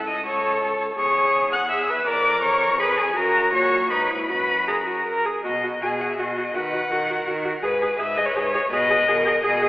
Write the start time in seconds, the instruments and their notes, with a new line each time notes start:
Already playing: cello C#2, viola A4
0.08 violin D#5 D#6
0.26 viola A4, violin C#5 C#6
0.98 cello E2, viola G#4, violin C#5 C#6
1.53 violin F#5 F#6
1.71 viola G#4, violin E5 E6
1.89 viola B4
2.06 cello F2, viola A#4, violin D5 D6
2.43 violin C#5 C#6
2.80 viola G#4, violin B4 B5
2.99 violin G#4 G#5
3.15 cello F#2, viola F#4, violin A#4 A#5
3.53 cello A#2, viola F#4, violin C#5 C#6
3.90 cello G#2, viola D#4, violin B4 B5
4.10 viola E4
4.29 cello F#2, viola F#4, violin B4 B5
4.67 viola G#4, violin A#4 A#5
4.86 viola F#4
5.06 viola A#4
5.25 viola G#4
5.45 cello B2, viola F#4, violin D#5
5.63 viola F#4
5.82 cello B2, viola F#4, violin G#4 G#5
6.00 viola F#4, violin F#5
6.10 violin E5
6.18 cello B2, viola F#4, violin F#4 D#5
6.37 viola F#4
6.54 cello D#3, viola F#4, violin B4 F#5
6.73 viola F#4
6.91 cello D#3, viola F#4, violin A#4
7.09 viola F#4
7.27 cello D#3, viola F#4
7.45 viola F#4
7.62 cello G#2, violin G#4 B4, viola G#4
7.82 viola G#4
7.98 cello G#2, viola G#4, violin B4 E5
8.17 viola G#4, violin D#5
8.26 violin C#5
8.35 cello G#2, viola G#4, violin B4 C#5
8.53 viola G#4, violin C#5
8.71 cello B2, viola G#4, violin B4 D#5
8.89 viola G#4
9.08 cello B2, viola G#4, violin A#4
9.25 viola G#4
9.43 cello B2, viola G#4, violin G#4
9.62 viola G#4